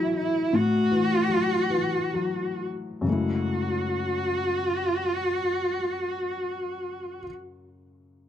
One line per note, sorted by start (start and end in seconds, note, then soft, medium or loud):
0.00 0.49 A2 medium
0.00 0.91 E3 soft
0.00 1.29 F#3 soft
0.00 0.16 E4 medium
0.17 0.57 E4 medium
0.53 3.03 A2 soft
0.53 2.61 F#4 medium
0.91 1.69 E3 soft
1.29 2.12 F#3 soft
1.70 3.03 E3 soft
2.14 3.05 F#3 soft
3.01 7.19 F#2 soft
3.01 7.21 C#3 soft
3.07 7.24 G#3 soft
3.07 7.27 A3 soft
3.07 7.24 F#4 medium
3.12 7.29 E4 soft